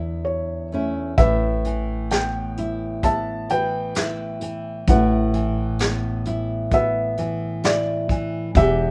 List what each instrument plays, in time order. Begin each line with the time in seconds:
Already playing: fretless electric bass E2, nylon-string guitar E2 D3 E4, felt piano C#5 E5
0.25 felt piano C#5
0.72 nylon-string guitar A3 C#4 E4
1.18 fretless electric bass A1, nylon-string guitar A2 E4, felt piano B4 E5, kick, closed hi-hat
1.65 nylon-string guitar E3, closed hi-hat
2.10 nylon-string guitar B3, felt piano G5, snare, closed hi-hat
2.57 nylon-string guitar E4, closed hi-hat
3.03 nylon-string guitar B3, felt piano E5 A5, kick, closed hi-hat
3.49 nylon-string guitar E3, felt piano B4 G5, closed hi-hat
3.95 nylon-string guitar E4, snare, closed hi-hat
4.41 nylon-string guitar E3, closed hi-hat
4.87 fretless electric bass A1, nylon-string guitar A2 E4, felt piano B4 F#5, kick, closed hi-hat
5.34 nylon-string guitar E3, closed hi-hat
5.79 nylon-string guitar B3, snare, closed hi-hat
6.25 nylon-string guitar E4, closed hi-hat
6.71 nylon-string guitar B3, felt piano B4 E5, kick, closed hi-hat
7.17 nylon-string guitar E3, closed hi-hat
7.63 nylon-string guitar E4, felt piano D5, snare, closed hi-hat
8.09 nylon-string guitar E3, kick, closed hi-hat
8.55 fretless electric bass E1, nylon-string guitar E2 G4, felt piano G4 E5, kick, closed hi-hat